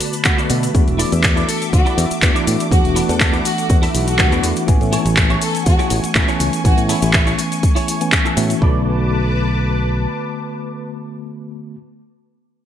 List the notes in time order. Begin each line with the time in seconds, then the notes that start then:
Already playing: D3 A3 B3 F#4 A4 B4 D5 A5 B5
0.01 open hi-hat, cabasa
0.13 closed hi-hat, cabasa
0.25 D3 A3 B3 F#4 F#5, kick, clap, closed hi-hat, cabasa
0.37 F#4 A4 B4 D5, closed hi-hat, cabasa
0.50 B2 E5, open hi-hat, cabasa
0.63 closed hi-hat, cabasa
0.73 E2 E3 A3 B3 D4 F#4 E5 D6, kick, closed hi-hat, cabasa
0.88 E1, closed hi-hat, cabasa
0.98 E4 A4 B4 D5, open hi-hat, cabasa
1.12 E2, closed hi-hat, cabasa
1.23 muted clean electric guitar stroke, kick, clap, closed hi-hat, cabasa
1.36 E4 A4 B4 D5, closed hi-hat, cabasa
1.47 A4, open hi-hat, cabasa
1.61 muted clean electric guitar stroke, closed hi-hat, cabasa
1.73 D2 F#4, kick, closed hi-hat, cabasa
1.85 E4 A4 B4 D5, closed hi-hat, cabasa
1.98 E2, open hi-hat, cabasa
2.11 muted fingered electric bass stroke, closed hi-hat, cabasa
2.22 E2 E3 A3 B3 D4 F#4, kick, clap, closed hi-hat, cabasa
2.34 E4 A4 B4 D5, closed hi-hat, cabasa
2.47 A2, open hi-hat, cabasa
2.60 closed hi-hat, cabasa
2.70 E2 E3 A3 B3 D4 F#4 F#5, kick, closed hi-hat, cabasa
2.85 E1, closed hi-hat, cabasa
2.95 E4 A4 B4 D5, open hi-hat, cabasa
3.08 E2 A4, closed hi-hat, cabasa
3.19 A4, kick, clap, closed hi-hat, cabasa
3.32 E4 A4 B4 D5, closed hi-hat, cabasa
3.45 F#4, open hi-hat, cabasa
3.57 muted clean electric guitar stroke, closed hi-hat, cabasa
3.70 E2, kick, closed hi-hat, cabasa
3.82 E4 A4 B4 E5, open hi-hat, cabasa
3.95 B1, open hi-hat, cabasa
4.07 F#4, closed hi-hat, cabasa
4.19 E3 A3 B3 D4 F#4, kick, clap, closed hi-hat, cabasa
4.31 E2 E4 A4 B4 D5, closed hi-hat, cabasa
4.43 E2, open hi-hat, cabasa
4.56 closed hi-hat, cabasa
4.67 A1 E3 A3 B3 C#4 G#5 C#6, kick, closed hi-hat, cabasa
4.81 A2, closed hi-hat, cabasa
4.92 E4 G#4 A4 C#5, open hi-hat, cabasa
5.05 A1, closed hi-hat, cabasa
5.17 muted clean electric guitar stroke, kick, clap, closed hi-hat, cabasa
5.30 E4 G#4 A4 C#5, closed hi-hat, cabasa
5.42 A4, open hi-hat, cabasa
5.54 muted clean electric guitar stroke, closed hi-hat, cabasa
5.66 E2 F#4, kick, closed hi-hat, cabasa
5.78 E4 G#4 A4 C#5, closed hi-hat, cabasa
5.90 A1, open hi-hat, cabasa
6.04 muted fingered electric bass stroke, closed hi-hat, cabasa
6.15 A1 E3 A3 B3 C#4 G#5, kick, clap, closed hi-hat, cabasa
6.28 E4 G#4 A4 C#5, closed hi-hat, cabasa
6.40 C#2, open hi-hat, cabasa
6.53 closed hi-hat, cabasa
6.64 A1 E3 A3 B3 C#4 F#4 G#5, kick, closed hi-hat, cabasa
6.77 A2, closed hi-hat, cabasa
6.89 E4 G#4 A4 C#5, open hi-hat, cabasa
7.02 A1 E4, closed hi-hat, cabasa
7.13 muted clean electric guitar stroke, kick, clap, closed hi-hat, cabasa
7.26 E4 G#4 A4 C#5, closed hi-hat, cabasa
7.39 open hi-hat, cabasa
7.51 muted clean electric guitar stroke, closed hi-hat, cabasa
7.63 kick, closed hi-hat, cabasa
7.75 E4 G#4 A4 C#5, open hi-hat, cabasa
7.88 open hi-hat, cabasa
8.01 E3 A3 B3 C#4 G#5, closed hi-hat, cabasa
8.12 kick, clap, closed hi-hat, cabasa
8.25 E4 G#4 A4 E5, closed hi-hat, cabasa
8.37 A2 E3 A3 B3 C#4 F#4, open hi-hat, cabasa
8.50 closed hi-hat, cabasa
8.59 B1 D3 A3 B3 A4 B4 D5 A5 D6, kick
8.64 F#4